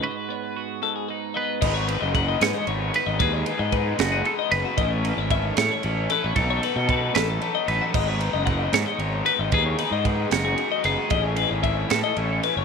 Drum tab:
CC |------|x-----|------|------|
RD |------|-xxxxx|xxxxxx|xxxxxx|
SD |------|---o--|---o--|---o--|
BD |------|o-o---|o-o---|o-o---|

CC |------|x-----|------|------|
RD |xxxxxx|-xxxxx|xxxxxx|xxxxxx|
SD |---o--|---o--|---o--|---o--|
BD |o-o---|o-o---|o-o---|o-o---|